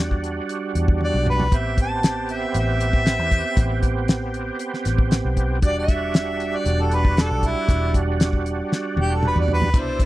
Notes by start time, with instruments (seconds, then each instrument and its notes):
Already playing: fingered electric bass E2, tonewheel organ G3 D4 F#4
0.11 kick
0.24 closed hi-hat
0.49 closed hi-hat
0.75 fingered electric bass E2, closed hi-hat
0.88 kick
1.01 harmonica D5, high tom
1.14 fingered electric bass B1, mid tom
1.26 harmonica B4, mid tom
1.40 floor tom
1.52 fingered electric bass A1, tonewheel organ B3 C4 G4, harmonica E5, kick, closed hi-hat
1.78 kick, closed hi-hat
1.82 harmonica A5
2.03 snare, closed hi-hat
2.29 closed hi-hat
2.33 harmonica E5
2.54 fingered electric bass A1, closed hi-hat
2.59 harmonica E5
2.80 closed hi-hat
2.93 kick
3.06 snare, closed hi-hat
3.19 fingered electric bass E2
3.31 kick, closed hi-hat
3.57 fingered electric bass A1, kick, closed hi-hat
3.83 kick, closed hi-hat
4.08 snare, closed hi-hat
4.34 closed hi-hat
4.59 closed hi-hat
4.74 snare
4.85 fingered electric bass A1, snare, closed hi-hat
4.98 kick
5.11 snare, closed hi-hat
5.25 fingered electric bass B1
5.37 kick, closed hi-hat
5.62 fingered electric bass E1, tonewheel organ G3 D4 F#4, harmonica D5, kick, closed hi-hat
5.79 harmonica E5
5.88 kick, closed hi-hat
6.14 snare, closed hi-hat
6.40 closed hi-hat
6.56 harmonica D5
6.66 fingered electric bass E1, closed hi-hat
6.82 harmonica A4
6.91 harmonica B4, closed hi-hat
7.05 kick
7.17 harmonica A4, snare, closed hi-hat
7.31 fingered electric bass B1
7.43 kick, closed hi-hat
7.47 harmonica E4
7.69 fingered electric bass E1, kick, closed hi-hat
7.94 kick, closed hi-hat
8.20 snare, closed hi-hat
8.33 kick
8.46 closed hi-hat
8.72 snare
8.96 fingered electric bass E1, high tom
9.01 harmonica G4
9.14 harmonica A4
9.23 mid tom
9.27 harmonica B4
9.36 fingered electric bass E2, mid tom
9.40 harmonica D5
9.48 floor tom
9.53 harmonica B4
9.62 floor tom
9.74 fingered electric bass C2, tonewheel organ B2 D4 E4, kick, closed hi-hat, crash
9.79 harmonica C5
10.00 kick, closed hi-hat